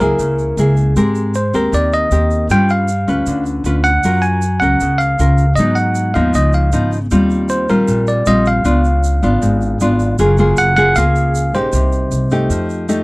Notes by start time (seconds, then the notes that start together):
Already playing: F#3
0.00 C#2 A#3 E4 G#4 A#4, shaker
0.19 C#2 C#3, shaker
0.39 shaker
0.57 C#2 A#3 E4 G#4, shaker
0.77 shaker
0.96 G#2 G#3 C4 G4 A#4, shaker
1.15 shaker
1.34 C5, shaker
1.53 D#2 C4 G4 A#4, shaker
1.72 D#2 D#3 D5, shaker
1.93 D#5, shaker
2.11 D#2 C4 G4 A#4, shaker
2.31 shaker
2.50 G2 G3 C#4 F4 B4 G5, shaker
2.69 F5, shaker
2.88 shaker
3.07 D2 C#4 F4 B4, shaker
3.26 D2 D3, shaker
3.46 shaker
3.64 D2 C#4 F4 B4, shaker
3.84 F#5, shaker
4.03 F#2 F#3 C#4 F4 A#4, shaker
4.22 G#5, shaker
4.42 shaker
4.60 C#2 C#4 A#4 F#5, shaker
4.80 C#2 C#3, shaker
4.98 F5, shaker
5.19 C#2 C#4 F4 A#4, shaker
5.38 shaker
5.56 G#2 F#3 B3 D#5, shaker
5.60 D#4
5.75 F#5, shaker
5.95 shaker
6.14 D#2 F3 B3 D#4 F5, shaker
6.34 C#2 C#3 D#5, shaker
6.53 F5, shaker
6.72 G#1 F3 B3 D#4, shaker
6.92 shaker
7.11 D#2 D#3 G3 C4 F4, shaker
7.30 shaker
7.49 C5, shaker
7.69 A#1 G3 C4 F4 A#4, shaker
7.88 A#1 A#2, shaker
8.07 D5, shaker
8.26 A#1 G3 C4 F4 D#5, shaker
8.45 F5, shaker
8.64 C#2 C#3 B3 D4 F4, shaker
8.84 shaker
9.04 shaker
9.23 G#1 B3 D4 F4, shaker
9.42 G#1 G#2, shaker
9.61 shaker
9.80 G#1 B3 D4 F4, shaker
9.99 shaker
10.19 F#1 F#3 A#3 F4 G#4, shaker
10.38 A#3 F4 G#4, shaker
10.57 F#1 F#5, shaker
10.77 A#3 F4 G#4 F#5, shaker
10.95 C#2 C#3 A#3 F4 G#4 F5, shaker
11.16 shaker
11.35 shaker
11.54 A#1 A#3 D#4 G4 C5, shaker
11.72 C2 C3, shaker
11.92 shaker
12.11 C2, shaker
12.30 A3 D#4 G4, shaker
12.49 F2 F3, shaker
12.69 shaker
12.89 A3 D#4 G4, shaker